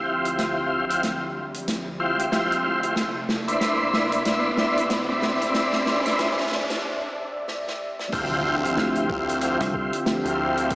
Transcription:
Already playing: D2 D3 F3 C4 E4 F4 G4 C5, riser
0.25 closed hi-hat
0.38 E5, snare, closed hi-hat
0.89 E4 F4 G4 C5, closed hi-hat
1.03 snare, closed hi-hat
1.54 closed hi-hat
1.68 snare, closed hi-hat
2.00 E4 F4 G4 C5
2.19 closed hi-hat
2.32 E4 F4 G4 C5, snare, closed hi-hat
2.52 closed hi-hat
2.64 E4 F4 G4 C5
2.83 E4 F4 G4 C5, closed hi-hat
2.96 C3 D5 E5, snare, closed hi-hat
3.29 snare
3.48 D4 E4 B4 C5, closed hi-hat
3.61 snare, closed hi-hat
3.93 snare
4.12 closed hi-hat
4.25 D4 E4 B4 C5, snare, closed hi-hat
4.57 D4 E4 B4 C5, snare
4.78 closed hi-hat
4.90 snare, closed hi-hat
5.09 D4 E4 B4 C5
5.22 snare
5.42 closed hi-hat
5.54 snare, closed hi-hat
5.73 snare
5.86 snare
6.05 D4 E4 B4 C5, snare, closed hi-hat
6.19 snare, closed hi-hat
6.38 snare
6.40 snare
6.47 snare
6.52 snare
6.70 snare, closed hi-hat
7.48 snare
7.68 snare
7.99 snare
8.12 D2 D3 F3 C4 E4 F4 G4 C5 E5, kick, closed hi-hat, crash, impact
8.63 E4 F4 G4 C5, closed hi-hat
8.77 D2, snare, closed hi-hat
8.95 closed hi-hat
9.10 D2, kick
9.29 closed hi-hat
9.41 E4 F4 G4 C5, closed hi-hat
9.60 C2, snare, closed hi-hat
9.74 E4 F4 G4 C5, kick
9.93 closed hi-hat
10.06 snare, closed hi-hat
10.25 D2 E4 F4 G4 C5, closed hi-hat
10.57 closed hi-hat
10.70 kick, closed hi-hat

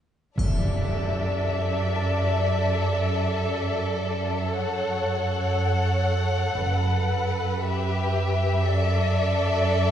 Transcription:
0.38 F#1 F#2 A4 D5 E5, impact, triangle
1.95 A5
4.51 C#5 F#5
6.58 F#1 F#2 B4
7.62 G4 E5
8.65 A4 D5

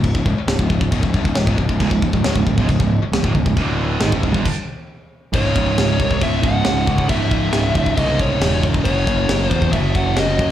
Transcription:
Already playing: C#1 C#2 G#2
0.04 kick, china
0.14 C#1 C#2 G#2, kick
0.25 C#1 C#2 G#2, kick
0.36 muted picked electric bass stroke, muted distorted electric guitar stroke
0.47 C#1 C#2 G#2, snare, china
0.59 C#1 C#2 G#2, kick
0.70 C#1 C#2 G#2, kick
0.80 C#1 C#2 G#2, kick
0.92 C#1 C#2 G#2, kick, china
1.02 C#1 C#2 G#2, kick
1.13 G1 G2 D3, kick
1.24 C#1 C#2 G#2, kick
1.35 C#1 C#2 G#2, snare, china
1.47 C#1 C#2 G#2, kick
1.58 C#1 C#2 G#2, kick
1.69 C#1 C#2 G#2, kick
1.80 C#1 C#2 G#2, kick, china
1.91 C#1 C#2 G#2, kick
2.02 C#1 C#2 G#2, kick
2.13 C#1 C#2 G#2, kick
2.24 D1 D2 A2, snare, china
2.35 C#1 C#2 G#2, kick
2.46 C#1 C#2 G#2, kick
2.57 C#1 C#2 G#2, kick
2.68 C#1 C#2 G#2, kick, china
2.79 C#1 C#2 G#2, kick
3.01 muted picked electric bass stroke, muted distorted electric guitar stroke
3.12 C#1 C#2 G#2, snare, china
3.23 D1 D2 A2, kick
3.34 C#1 C#2 G#2, kick
3.45 C#1 C#2 G#2, kick
3.56 D1 D2 A2 D3, kick, china
4.01 G#1 G#2 D#3, snare, china
4.12 A1 A2 E3, kick
4.23 C#1 C#2 G#2, kick
4.34 G1 G2 D3, kick
4.46 kick, crash
5.33 C#1 C#2 G#2 C#5, kick, crash
5.37 C#3
5.56 C#1, kick, crash
5.78 C#1, snare, crash
5.99 C2, kick, crash
6.11 kick
6.20 C#1 C#2 G#2 C#3 E5, kick, crash
6.43 C#1 F#5, kick, crash
6.65 C#1, snare, crash
6.87 C#2, kick, crash
6.98 kick
7.09 C#1 C#2 G#2 E5, kick, crash
7.13 C#3
7.31 C#1, kick, crash
7.53 C#1, snare, crash
7.74 C#1, kick, crash
7.86 kick
7.96 C2 C#2 G#2 C#3 D#5, kick, crash
8.19 C#5, kick, crash
8.41 E1, snare, crash
8.63 kick, crash
8.74 kick
8.84 F#1 F#2 C#3 F#3 C#5, kick, crash
9.06 F#1, kick, crash
9.28 F#1, snare, crash
9.46 E2 C5
9.51 kick, crash
9.62 kick
9.72 F#1 F#2 C#3 E5, kick, crash
9.76 F#3
9.95 F#1 F#5, kick, crash
10.17 F#1 D#5, snare, crash
10.38 F#2, kick, crash

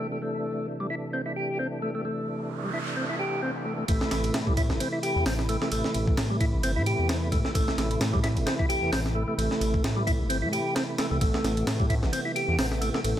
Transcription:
Already playing: C3 E3 A3 D4
0.12 A3
0.22 A3
0.80 G3
0.90 E4
1.13 C4
1.26 E4
1.36 G4
1.59 C4
1.82 A3
1.95 A3
2.05 A3, noise sweep
2.64 G3
2.74 E4
2.97 C4
3.09 E4
3.19 G4
3.42 C4
3.65 A3
3.78 A3
3.88 A1 C3 E3 A3 E4, kick, ride
4.01 snare
4.11 A1, snare, ride
4.24 ride
4.34 A2, snare, ride
4.47 G3, kick
4.57 E4, kick, ride
4.70 G1, snare
4.80 C4, ride
4.93 E4
5.03 G4, ride
5.16 E2
5.26 A1 C4, snare, open hi-hat
5.39 snare
5.49 A3, ride
5.62 A3, snare
5.72 A1 A3, ride
5.84 snare
5.94 A1, ride
6.07 kick
6.17 A2, snare, ride
6.30 G3
6.40 E4, kick, ride
6.53 G1
6.63 C4, ride
6.76 A2 E4
6.86 G4, ride
6.99 E2
7.09 C4, snare, ride
7.32 A2 A3, kick, ride
7.45 A3, snare
7.55 A1 A3, kick, ride
7.68 snare
7.77 A1, snare, ride
7.91 ride
8.00 A2, snare, ride
8.13 G3, kick
8.23 E4, snare, ride
8.36 G1, ride
8.46 C4, snare, ride
8.59 E4, kick
8.69 G4, ride
8.82 E2
8.92 A1 C4, snare, open hi-hat
9.06 snare
9.15 A3
9.28 A3
9.38 A1 A3, ride
9.51 snare
9.61 A1, ride
9.74 kick
9.84 A2, snare, ride
9.97 G3
10.07 E4, kick, ride
10.19 G1
10.30 C4, ride
10.42 A2 E4
10.53 G4, ride
10.75 C4, snare, ride
10.98 A3, snare, ride
11.11 C2 A3
11.21 A1 A3 B3, kick, ride
11.34 snare
11.44 A1, snare, ride
11.57 ride
11.67 A2, snare, ride
11.79 G3, kick
11.90 E4, kick, ride
12.02 G1, snare
12.13 C4, ride
12.25 E4
12.36 G4, ride
12.48 E2
12.58 A1 C4, snare, open hi-hat
12.72 snare
12.81 A3, ride
12.94 A3, snare
13.04 A1 A3, ride

